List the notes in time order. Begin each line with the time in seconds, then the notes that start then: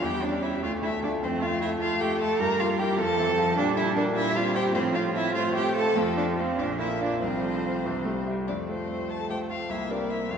0.02 E2 G3 G4 G5
0.22 C#4 D4 D5
0.41 C#4 E4 G4 E5
0.62 D2 A3 F4 F5
0.82 A3 E4 E5
1.02 D4 F4 A4 D5
1.21 F2 A3 C4 C5
1.42 F4 F5
1.60 A3 E4 E5
1.80 A3 F4 A4 F5
2.01 A3 G4 G5
2.20 F4 A4 A5
2.39 G2 G3 A#4 A#5
2.59 A#3 F4 F5
2.78 E4 G4 G5
2.98 F2 F3 A4 A5
3.17 E3 C4
3.37 F3 F4 A4
3.57 A#2 G3 D4 D5
3.76 D4 E4 E5
3.97 D4 G4 A#4 D5
4.15 A#2 G3 E4 E5
4.35 C4 F4 F5
4.54 G4 C5 G5
4.74 A2 F3 C4 C5
4.95 F4 F5
5.15 C4 E4 E5
5.34 A3 F4 C5 F5
5.56 C4 G4 G5
5.75 F4 A4 A5
5.94 F2 F3 A3 A4
6.17 C4 D4 D5
6.37 C4 F4 C5 F5
6.58 A#1 F3 D4 D5
6.79 A#3 E4 E5
7.00 D4 F4 D5 F5
7.20 C2 F3 C4 C5
7.43 A3
7.65 F4 F5
7.85 C2 E3
8.05 G3 A3
8.26 G3 G4 E5
8.46 F2 A3 D4 D5
8.69 A3 C4 F4 C5
9.10 A4 A5
9.30 A3 F4 G4 C5 G5
9.49 F4 F5
9.69 C2 A#3 E4 E5
9.90 C4 D4 G4 A#4 D5
10.09 E4 E5
10.29 F2 A3 F4 F5